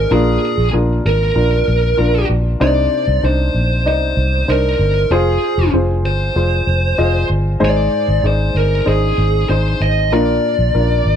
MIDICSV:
0, 0, Header, 1, 4, 480
1, 0, Start_track
1, 0, Tempo, 625652
1, 83, Time_signature, 4, 2, 24, 8
1, 8563, End_track
2, 0, Start_track
2, 0, Title_t, "Lead electric guitar"
2, 0, Program_c, 0, 29
2, 0, Note_on_c, 0, 70, 70
2, 93, Note_off_c, 0, 70, 0
2, 96, Note_on_c, 0, 68, 61
2, 539, Note_off_c, 0, 68, 0
2, 817, Note_on_c, 0, 70, 83
2, 1739, Note_off_c, 0, 70, 0
2, 2011, Note_on_c, 0, 74, 92
2, 2494, Note_off_c, 0, 74, 0
2, 2497, Note_on_c, 0, 72, 68
2, 2969, Note_off_c, 0, 72, 0
2, 2978, Note_on_c, 0, 72, 67
2, 3453, Note_on_c, 0, 70, 70
2, 3464, Note_off_c, 0, 72, 0
2, 3927, Note_off_c, 0, 70, 0
2, 3930, Note_on_c, 0, 68, 60
2, 4375, Note_off_c, 0, 68, 0
2, 4647, Note_on_c, 0, 72, 89
2, 5574, Note_off_c, 0, 72, 0
2, 5868, Note_on_c, 0, 74, 85
2, 6340, Note_off_c, 0, 74, 0
2, 6343, Note_on_c, 0, 72, 68
2, 6557, Note_off_c, 0, 72, 0
2, 6574, Note_on_c, 0, 70, 74
2, 6812, Note_off_c, 0, 70, 0
2, 6815, Note_on_c, 0, 68, 73
2, 7282, Note_off_c, 0, 68, 0
2, 7286, Note_on_c, 0, 72, 78
2, 7531, Note_off_c, 0, 72, 0
2, 7531, Note_on_c, 0, 75, 82
2, 7774, Note_off_c, 0, 75, 0
2, 7777, Note_on_c, 0, 74, 78
2, 8563, Note_off_c, 0, 74, 0
2, 8563, End_track
3, 0, Start_track
3, 0, Title_t, "Grand piano"
3, 0, Program_c, 1, 0
3, 0, Control_c, 1, 64, 127
3, 0, Note_on_c, 1, 63, 60
3, 0, Note_on_c, 1, 68, 50
3, 0, Note_on_c, 1, 72, 70
3, 0, Note_on_c, 1, 74, 61
3, 84, Note_on_c, 1, 62, 84
3, 89, Note_on_c, 1, 46, 58
3, 89, Note_on_c, 1, 65, 76
3, 91, Note_on_c, 1, 70, 90
3, 93, Control_c, 1, 64, 0
3, 94, Note_off_c, 1, 63, 0
3, 97, Note_off_c, 1, 68, 0
3, 97, Note_off_c, 1, 74, 0
3, 99, Note_off_c, 1, 72, 0
3, 213, Control_c, 1, 64, 127
3, 468, Note_off_c, 1, 62, 0
3, 470, Note_off_c, 1, 65, 0
3, 471, Note_off_c, 1, 70, 0
3, 558, Note_on_c, 1, 62, 57
3, 562, Note_on_c, 1, 65, 54
3, 562, Note_on_c, 1, 70, 68
3, 775, Note_off_c, 1, 46, 0
3, 945, Note_off_c, 1, 62, 0
3, 947, Note_off_c, 1, 65, 0
3, 947, Note_off_c, 1, 70, 0
3, 1038, Note_on_c, 1, 62, 58
3, 1039, Note_on_c, 1, 65, 54
3, 1040, Note_on_c, 1, 70, 62
3, 1424, Note_off_c, 1, 62, 0
3, 1425, Note_off_c, 1, 65, 0
3, 1426, Note_off_c, 1, 70, 0
3, 1515, Note_on_c, 1, 65, 58
3, 1516, Note_on_c, 1, 62, 64
3, 1521, Note_on_c, 1, 70, 62
3, 1903, Note_off_c, 1, 65, 0
3, 1904, Note_off_c, 1, 62, 0
3, 1906, Note_off_c, 1, 70, 0
3, 1995, Note_on_c, 1, 62, 78
3, 1997, Note_on_c, 1, 48, 57
3, 1999, Note_on_c, 1, 63, 73
3, 2002, Note_on_c, 1, 72, 83
3, 2012, Control_c, 1, 64, 0
3, 2132, Control_c, 1, 64, 127
3, 2383, Note_off_c, 1, 62, 0
3, 2385, Note_off_c, 1, 63, 0
3, 2386, Note_off_c, 1, 72, 0
3, 2481, Note_on_c, 1, 62, 63
3, 2484, Note_on_c, 1, 63, 55
3, 2485, Note_on_c, 1, 72, 62
3, 2689, Note_off_c, 1, 48, 0
3, 2866, Note_off_c, 1, 62, 0
3, 2867, Note_off_c, 1, 63, 0
3, 2868, Note_off_c, 1, 72, 0
3, 2957, Note_on_c, 1, 74, 57
3, 2961, Note_on_c, 1, 63, 55
3, 2965, Note_on_c, 1, 75, 62
3, 3344, Note_off_c, 1, 74, 0
3, 3346, Note_off_c, 1, 63, 0
3, 3348, Note_off_c, 1, 75, 0
3, 3437, Note_on_c, 1, 63, 47
3, 3439, Note_on_c, 1, 62, 53
3, 3440, Note_on_c, 1, 72, 62
3, 3824, Note_off_c, 1, 63, 0
3, 3825, Note_off_c, 1, 62, 0
3, 3825, Note_off_c, 1, 72, 0
3, 3922, Note_on_c, 1, 65, 89
3, 3924, Note_on_c, 1, 68, 81
3, 3925, Note_on_c, 1, 72, 93
3, 3933, Control_c, 1, 64, 0
3, 4049, Control_c, 1, 64, 127
3, 4306, Note_off_c, 1, 65, 0
3, 4307, Note_off_c, 1, 68, 0
3, 4308, Note_off_c, 1, 72, 0
3, 4399, Note_on_c, 1, 65, 64
3, 4402, Note_on_c, 1, 72, 70
3, 4404, Note_on_c, 1, 68, 57
3, 4785, Note_off_c, 1, 65, 0
3, 4787, Note_off_c, 1, 72, 0
3, 4788, Note_off_c, 1, 68, 0
3, 4878, Note_on_c, 1, 65, 54
3, 4880, Note_on_c, 1, 68, 50
3, 4882, Note_on_c, 1, 72, 67
3, 5265, Note_off_c, 1, 65, 0
3, 5266, Note_off_c, 1, 68, 0
3, 5267, Note_off_c, 1, 72, 0
3, 5356, Note_on_c, 1, 65, 68
3, 5357, Note_on_c, 1, 68, 58
3, 5357, Note_on_c, 1, 75, 76
3, 5743, Note_off_c, 1, 65, 0
3, 5744, Note_off_c, 1, 68, 0
3, 5744, Note_off_c, 1, 75, 0
3, 5831, Note_on_c, 1, 63, 84
3, 5832, Note_on_c, 1, 68, 77
3, 5833, Note_on_c, 1, 44, 54
3, 5834, Note_on_c, 1, 72, 96
3, 5852, Control_c, 1, 64, 0
3, 5999, Control_c, 1, 64, 127
3, 6221, Note_off_c, 1, 63, 0
3, 6222, Note_off_c, 1, 68, 0
3, 6223, Note_off_c, 1, 72, 0
3, 6321, Note_on_c, 1, 63, 57
3, 6322, Note_on_c, 1, 68, 55
3, 6325, Note_on_c, 1, 74, 62
3, 6527, Note_off_c, 1, 44, 0
3, 6706, Note_off_c, 1, 63, 0
3, 6707, Note_off_c, 1, 68, 0
3, 6708, Note_off_c, 1, 74, 0
3, 6795, Note_on_c, 1, 63, 58
3, 6797, Note_on_c, 1, 72, 64
3, 6798, Note_on_c, 1, 68, 51
3, 7183, Note_off_c, 1, 63, 0
3, 7185, Note_off_c, 1, 68, 0
3, 7185, Note_off_c, 1, 72, 0
3, 7282, Note_on_c, 1, 68, 48
3, 7283, Note_on_c, 1, 63, 53
3, 7288, Note_on_c, 1, 72, 64
3, 7667, Note_off_c, 1, 63, 0
3, 7667, Note_off_c, 1, 68, 0
3, 7670, Note_off_c, 1, 72, 0
3, 7765, Note_on_c, 1, 62, 80
3, 7767, Note_on_c, 1, 46, 56
3, 7767, Note_on_c, 1, 65, 73
3, 7769, Note_on_c, 1, 70, 89
3, 7773, Control_c, 1, 64, 0
3, 7899, Control_c, 1, 64, 127
3, 8149, Note_off_c, 1, 62, 0
3, 8149, Note_off_c, 1, 65, 0
3, 8150, Note_off_c, 1, 70, 0
3, 8242, Note_on_c, 1, 62, 54
3, 8243, Note_on_c, 1, 65, 51
3, 8245, Note_on_c, 1, 70, 70
3, 8455, Note_off_c, 1, 46, 0
3, 8563, Note_off_c, 1, 62, 0
3, 8563, Note_off_c, 1, 65, 0
3, 8563, Note_off_c, 1, 70, 0
3, 8563, End_track
4, 0, Start_track
4, 0, Title_t, "Fingered electric bass"
4, 0, Program_c, 2, 33
4, 85, Note_on_c, 2, 34, 83
4, 281, Note_off_c, 2, 34, 0
4, 444, Note_on_c, 2, 34, 82
4, 542, Note_off_c, 2, 34, 0
4, 566, Note_on_c, 2, 34, 77
4, 761, Note_off_c, 2, 34, 0
4, 808, Note_on_c, 2, 32, 74
4, 1003, Note_off_c, 2, 32, 0
4, 1041, Note_on_c, 2, 34, 75
4, 1238, Note_off_c, 2, 34, 0
4, 1288, Note_on_c, 2, 34, 76
4, 1482, Note_off_c, 2, 34, 0
4, 1525, Note_on_c, 2, 34, 76
4, 1721, Note_off_c, 2, 34, 0
4, 1761, Note_on_c, 2, 34, 68
4, 1958, Note_off_c, 2, 34, 0
4, 2000, Note_on_c, 2, 36, 78
4, 2198, Note_off_c, 2, 36, 0
4, 2360, Note_on_c, 2, 36, 81
4, 2459, Note_off_c, 2, 36, 0
4, 2480, Note_on_c, 2, 36, 76
4, 2677, Note_off_c, 2, 36, 0
4, 2719, Note_on_c, 2, 34, 65
4, 2964, Note_off_c, 2, 34, 0
4, 2964, Note_on_c, 2, 36, 77
4, 3160, Note_off_c, 2, 36, 0
4, 3199, Note_on_c, 2, 36, 83
4, 3397, Note_off_c, 2, 36, 0
4, 3441, Note_on_c, 2, 36, 77
4, 3638, Note_off_c, 2, 36, 0
4, 3676, Note_on_c, 2, 31, 78
4, 3875, Note_off_c, 2, 31, 0
4, 3916, Note_on_c, 2, 29, 86
4, 4115, Note_off_c, 2, 29, 0
4, 4279, Note_on_c, 2, 29, 81
4, 4379, Note_off_c, 2, 29, 0
4, 4399, Note_on_c, 2, 29, 74
4, 4640, Note_off_c, 2, 29, 0
4, 4640, Note_on_c, 2, 31, 75
4, 4838, Note_off_c, 2, 31, 0
4, 4879, Note_on_c, 2, 29, 77
4, 5077, Note_off_c, 2, 29, 0
4, 5118, Note_on_c, 2, 29, 91
4, 5317, Note_off_c, 2, 29, 0
4, 5360, Note_on_c, 2, 29, 78
4, 5558, Note_off_c, 2, 29, 0
4, 5598, Note_on_c, 2, 31, 72
4, 5797, Note_off_c, 2, 31, 0
4, 5842, Note_on_c, 2, 32, 91
4, 6039, Note_off_c, 2, 32, 0
4, 6201, Note_on_c, 2, 32, 77
4, 6300, Note_off_c, 2, 32, 0
4, 6317, Note_on_c, 2, 32, 84
4, 6516, Note_off_c, 2, 32, 0
4, 6557, Note_on_c, 2, 31, 85
4, 6756, Note_off_c, 2, 31, 0
4, 6804, Note_on_c, 2, 32, 79
4, 7000, Note_off_c, 2, 32, 0
4, 7042, Note_on_c, 2, 32, 96
4, 7239, Note_off_c, 2, 32, 0
4, 7282, Note_on_c, 2, 32, 77
4, 7480, Note_off_c, 2, 32, 0
4, 7521, Note_on_c, 2, 32, 62
4, 7761, Note_off_c, 2, 32, 0
4, 7761, Note_on_c, 2, 34, 100
4, 7959, Note_off_c, 2, 34, 0
4, 8122, Note_on_c, 2, 34, 85
4, 8221, Note_off_c, 2, 34, 0
4, 8247, Note_on_c, 2, 34, 78
4, 8442, Note_off_c, 2, 34, 0
4, 8481, Note_on_c, 2, 32, 72
4, 8563, Note_off_c, 2, 32, 0
4, 8563, End_track
0, 0, End_of_file